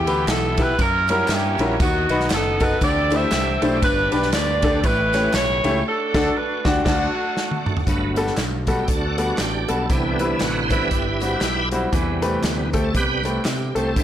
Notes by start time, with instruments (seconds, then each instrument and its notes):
Already playing: grand piano E3, saxophone section B3 E4 G4, tonewheel organ B3 E4 G4
0.06 picked electric bass D2, grand piano E4 G4 B4, ride, tambourine
0.27 picked electric bass B1, saxophone section A4, snare, clap, ride, tambourine
0.57 grand piano E4 G4 B4, saxophone section B4, kick, ride, tambourine
0.79 picked electric bass F#2, tonewheel organ F#3 G3 C#4 E4 G4, saxophone section C#4 E4 A#4, kick, ride, tambourine
0.86 tonewheel organ A#3
1.08 grand piano G3 C#4 E4 F#4 A#4, saxophone section A#4, ride, tambourine
1.28 picked electric bass G2, saxophone section A#3 E4, snare, clap, ride, tambourine
1.32 saxophone section G4
1.58 picked electric bass A#1, grand piano G3 C#4 E4 F#4 A#4, ride, tambourine
1.80 picked electric bass D#2, grand piano D#3, tonewheel organ B3 D#4 E4, saxophone section B3 D#4 F#4, kick, ride, tambourine
1.86 tonewheel organ F#4
2.09 picked electric bass B1, grand piano D#4 F#4 B4, ride, tambourine
2.20 snare
2.30 picked electric bass F#1, saxophone section A4, snare, clap, ride, tambourine
2.60 grand piano D#4 F#4 A4, saxophone section B4, kick, ride, tambourine
2.81 picked electric bass D2, grand piano D3, tonewheel organ E3 A3 C4 D4 G4, saxophone section G4 A4 D5, kick, ride, tambourine
3.10 grand piano A3 D4 E4 G4 C5, saxophone section G4 E5, ride, tambourine
3.15 saxophone section C5
3.31 picked electric bass C2, snare, clap, ride, tambourine
3.62 picked electric bass B1, grand piano A3 D4 E4 G4 C5, ride, tambourine
3.82 picked electric bass G1, grand piano G2, tonewheel organ B3 D4 G4, saxophone section D4 G4 B4, kick, ride, tambourine
4.12 picked electric bass B1, grand piano D4 G4 B4, ride, tambourine
4.22 snare
4.32 picked electric bass D2, saxophone section G4 B4 D5, snare, clap, ride, tambourine
4.62 grand piano D4 G4 A4, kick, ride, tambourine
4.84 picked electric bass A1, grand piano A2, tonewheel organ E3 G3 A3 B3 G4, saxophone section E4 G4 B4, kick, ride, tambourine
4.91 tonewheel organ C#4
5.13 grand piano A3 C#4 E4 G4 C#5, snare, ride, tambourine
5.33 picked electric bass B1, saxophone section E4 G4 C#5, snare, clap, ride, tambourine
5.64 picked electric bass C#2, grand piano A3 C#4 E4 G4 E5, ride, tambourine
5.86 tonewheel organ A3 D4 F4, saxophone section D4 F#4 A4
5.92 tonewheel organ F#4
6.14 picked electric bass D2, grand piano D4 F#4 A4, kick, snare, crash
6.36 saxophone section B4
6.65 picked electric bass D2, grand piano D4 F#4, saxophone section G4, kick, snare
6.85 picked electric bass D2, saxophone section A3 D4 F#4, grand piano D4 F#4, kick, snare, crash
7.37 snare
7.51 high tom
7.66 mid tom
7.77 floor tom
7.87 picked electric bass G1, grand piano G2, french horn section D3 A3 B3 F#4, tonewheel organ F#3 A3 B3, kick, closed hi-hat, tambourine
8.16 grand piano G3 B3 F#4 A4, closed hi-hat, tambourine
8.27 snare
8.37 picked electric bass B1, snare, clap, closed hi-hat, tambourine
8.67 grand piano G3 B3 F#4 A4, tonewheel organ F#4, kick, closed hi-hat, tambourine
8.80 tonewheel organ G4
8.88 picked electric bass D2, tonewheel organ D4 F#4 A4, kick, closed hi-hat, tambourine
9.18 grand piano G3 B3 F#4 A4, tonewheel organ F#4, closed hi-hat, tambourine
9.38 picked electric bass A1, tonewheel organ G4, snare, clap, closed hi-hat, tambourine
9.68 picked electric bass B1, grand piano G3 B3 F#4 A4, tonewheel organ A4, closed hi-hat, tambourine
9.89 picked electric bass C2, grand piano C3, tonewheel organ D3 E3 B3 E4 G4, french horn section G3 B3 E4, kick, closed hi-hat, tambourine
10.19 grand piano G3 C4 E4 B4, tonewheel organ E4, closed hi-hat, tambourine
10.40 picked electric bass A1, tonewheel organ F#4, snare, clap, closed hi-hat, tambourine
10.63 tonewheel organ C5
10.70 tonewheel organ D3 E3 B3 E4 G4 B4, grand piano G3 C4 E4 B4, kick, closed hi-hat, tambourine
10.91 picked electric bass G1, kick, closed hi-hat, tambourine
11.20 grand piano G3 C4 E4 F#4, closed hi-hat, tambourine
11.41 picked electric bass B1, snare, clap, closed hi-hat, tambourine
11.71 grand piano G3 C4 E4 F#4, closed hi-hat, tambourine
11.92 picked electric bass E2, tonewheel organ C3 G3 B3, french horn section C3 A3 B3, grand piano E3, kick, closed hi-hat, tambourine
12.22 grand piano A3 C4 G4 B4, closed hi-hat, tambourine
12.43 picked electric bass D2, snare, clap, closed hi-hat, tambourine
12.73 grand piano A3 C4 G4 A4, tonewheel organ G4, kick, closed hi-hat, tambourine
12.84 tonewheel organ A4
12.94 picked electric bass C2, tonewheel organ C3 G3 B3 G4 B4, kick, closed hi-hat, tambourine
13.23 grand piano A3 C4 G4 B4, tonewheel organ G4, closed hi-hat, tambourine
13.44 picked electric bass C3, tonewheel organ G4, snare, clap, closed hi-hat, tambourine
13.75 picked electric bass C2, grand piano A3 C4 G4 A4, tonewheel organ C4 A4, closed hi-hat, tambourine
13.96 picked electric bass D2, grand piano D3, tonewheel organ E3 G3 C4, french horn section D4, kick, closed hi-hat, tambourine